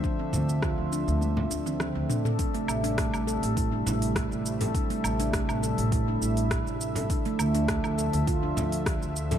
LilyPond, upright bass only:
\new Staff \with { instrumentName = "Upright bass" } { \clef bass \time 4/4 \key a \phrygian \tempo 4 = 102 r8 d,8. d,8 d,8. d,8. d,16 r8 | r8 a,,8. a,,8 a,,8. a,,8. a,,8. | r8 a,,8. a,,8 a,,8. a,,8. a,,8. | r8 d,8. d,8 d,8. d,8. d,8. | }